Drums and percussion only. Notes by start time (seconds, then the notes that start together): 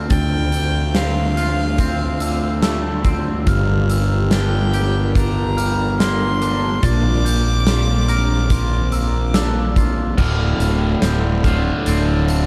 0.10 kick, closed hi-hat
0.52 closed hi-hat
0.95 snare, closed hi-hat
1.37 closed hi-hat
1.78 kick, closed hi-hat
2.20 closed hi-hat
2.62 snare, closed hi-hat
3.04 kick, closed hi-hat
3.47 kick, closed hi-hat
3.90 closed hi-hat
4.31 snare, closed hi-hat
4.74 closed hi-hat
5.15 kick, closed hi-hat
5.58 closed hi-hat
6.00 snare, closed hi-hat
6.42 closed hi-hat
6.83 kick, closed hi-hat
7.26 closed hi-hat
7.67 snare, closed hi-hat
8.09 closed hi-hat
8.50 kick, closed hi-hat
8.92 closed hi-hat
9.34 snare, closed hi-hat
9.76 kick, closed hi-hat
10.18 kick, crash
10.60 closed hi-hat
11.02 snare, closed hi-hat
11.44 kick, closed hi-hat
11.86 closed hi-hat
12.28 closed hi-hat